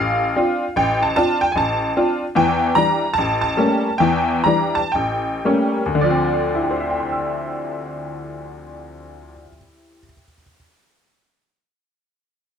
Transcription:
Already playing: A1 F5
0.36 C4 D4 F4
0.76 A1 G5
1.02 A5
1.16 C4 D4 F4 A5
1.41 G5
1.52 A1 G#5
1.57 A5
1.97 C4 D4 F4
2.35 E2 E3 G5
2.75 E3 G3 D4 A#5
3.14 A5
3.18 A1
3.41 A5
3.57 G3 A3 A#3 C#4
3.98 E2 E3 G5
4.44 E3 G3 D4 A#5
4.75 A5
4.92 A1 G5
5.45 G3 A3 A#3 C#4
5.86 D2
5.95 D3
6.01 F3 D5
6.10 C4
6.55 E4
6.62 G4
6.71 C5
6.80 E5
6.90 G5
7.00 C6
7.12 E6

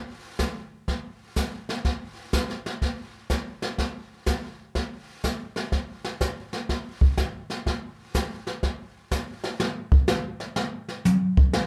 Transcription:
0.39 kick, snare, hi-hat pedal
0.88 brush sweep, kick, snare
1.36 kick, snare, hi-hat pedal
1.69 snare
1.85 brush sweep, kick, snare
2.33 kick, snare, hi-hat pedal
2.50 snare
2.66 snare
2.82 brush sweep, kick, snare
3.30 kick, snare, hi-hat pedal
3.62 snare
3.78 brush sweep, kick, snare
4.26 kick, snare, hi-hat pedal
4.75 brush sweep, kick, snare
5.23 kick, snare, hi-hat pedal
5.56 snare
5.72 brush sweep, kick, snare
6.05 snare
6.21 kick, snare, hi-hat pedal
6.53 snare
6.69 brush sweep, kick, snare
7.01 kick
7.17 kick, snare, hi-hat pedal
7.50 snare
7.66 brush sweep, kick, snare
8.14 kick, snare, hi-hat pedal
8.47 snare
8.63 brush sweep, kick, snare
9.11 kick, snare, hi-hat pedal
9.44 snare
9.60 snare
9.92 kick
10.08 snare, hi-hat pedal
10.40 snare
10.56 snare
10.89 snare
11.05 hi-hat pedal, high tom
11.37 kick
11.53 snare

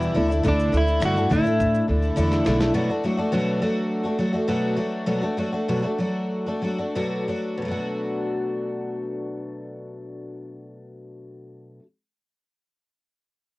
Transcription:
Already playing: E2 B2 E3 G3 D4 E4
0.02 shaker
0.14 D2 D3 A3 D4 E4
0.28 A3 D4 E4, shaker
0.43 D2 D3 A3 D4 E4, kick, shaker
0.60 shaker
0.72 D2 D3 A3 D4 E4, shaker
0.88 shaker
1.00 G2 D3 A3 D4 E4, finger snap, shaker
1.05 F#4
1.16 A3 D4 E4, shaker
1.29 A2 D3 A3 D4 E4, kick, shaker
1.43 A3 D4 E4, shaker
1.60 kick, shaker
1.75 shaker
1.88 D2 D3 A3 D4 E4
2.02 shaker
2.16 E2 D3 A3 D4 E4, shaker
2.32 snare, shaker
2.45 B1 D3 A3 D4 E4, snare, shaker
2.60 A3 D4 E4, snare, shaker
2.74 B2 F#3 A3 D4 F#4
2.90 A3 D4 F#4
3.04 F#3 A3 D4 F#4
3.17 A3 D4 F#4
3.32 B2 F#3 A3 D4 F#4
3.62 F#3 A3 D4 F#4
4.04 A3 D4 F#4
4.19 F#3 A3 D4 F#4
4.33 A3 D4 F#4
4.48 B2 F#3 A3 D4 F#4
4.76 F#3 A3 D4 F#4
5.06 B2 F#3 A3 D4 F#4
5.22 A3 D4 F#4
5.37 F#3 A3 D4 F#4
5.53 A3 D4 F#4
5.68 B2 F#3 A3 D4 F#4
5.83 A3 D4 F#4
5.98 F#3 A3 D4 F#4
6.46 A3 D4 F#4
6.62 F#3 A3 D4 F#4
6.78 A3 D4 F#4
6.95 B2 F#3 A3 D4 F#4
7.28 F#3 A3 D4 F#4
7.58 B2
7.62 F#3 A3
7.68 D4 F#4

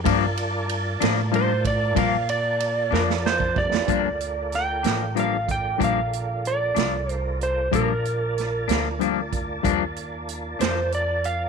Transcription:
0.04 G2 F3 A#3 D4 F4 A#4 D5 A5, kick, ride
0.37 ride
0.69 ride
1.00 A2 F3 A#3 D4, snare, ride
1.32 G2 F3 A#3 D4, ride
1.36 C5
1.65 D5, kick, ride
1.95 G2 A#2 F3 A#3 D4 F5, kick, ride
2.29 D5, ride
2.60 ride
2.91 F2 F3 A#3 D4 A#4, snare
3.10 snare
3.26 C5, snare
3.40 kick
3.56 G3 A3 D5, kick
3.62 B3 C4
3.68 D4 E4
3.73 F4 G4, snare
3.80 A4 B4
3.84 G2 A#4 C5 D5
3.88 D2 F3 A#3 D4 F4 A4, kick, closed hi-hat
4.20 closed hi-hat
4.52 G5, snare, closed hi-hat
4.83 A1 F3 A#3 D4, snare, closed hi-hat
5.15 G2 F3 A#3 D4, closed hi-hat
5.20 F5
5.49 G5, kick, closed hi-hat
5.78 A#1 G2 F3 A#3 D4, kick, closed hi-hat
5.84 F5
6.13 closed hi-hat
6.45 D5, closed hi-hat
6.75 C2 F3 A#3 D4, snare, closed hi-hat
7.09 C5, closed hi-hat
7.41 C5, closed hi-hat
7.71 A#1 G2 F3 A#3 D4 F4 A#4 D5 A5, kick, closed hi-hat
8.05 closed hi-hat
8.38 snare, closed hi-hat
8.68 D2 F3 A#3 D4, snare, closed hi-hat
8.99 G2 F3 A#3 D4, closed hi-hat
9.33 kick, closed hi-hat
9.63 D#2 G2 F3 A#3 D4, kick, closed hi-hat
9.96 closed hi-hat
10.29 closed hi-hat
10.59 F2 F3 A#3 D4 C5, snare, closed hi-hat
10.92 D5, closed hi-hat
11.24 F5, closed hi-hat

